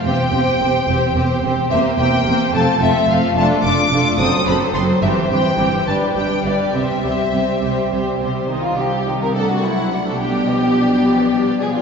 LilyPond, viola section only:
\new Staff \with { instrumentName = "Viola section" } { \time 6/8 \key c \major \tempo 4. = 71 c'8 c'8 c'8 c'8 c'8 c'8 | <bes c'>8 <bes c'>8 <bes c'>8 <a c'>8 <a c'>8 <a c'>8 | <a d'>8 <a d'>8 <a d'>8 <fis c'>8 <fis c'>8 <fis c'>8 | <e c'>8 <e c'>8 <e c'>8 <g d'>8 <g d'>8 <g d'>8 |
<g c'>8 <g c'>8 <g c'>8 <g c'>8 <g c'>8 <g c'>8 | \key g \phrygian <ees ees'>8 <g c'>8 <ees ees'>8 <a d'>8 <fis c'>8 <a d'>8 | <g d'>8 <f b>8 <g d'>8 <f b>8 <g d'>8 <f b>8 | }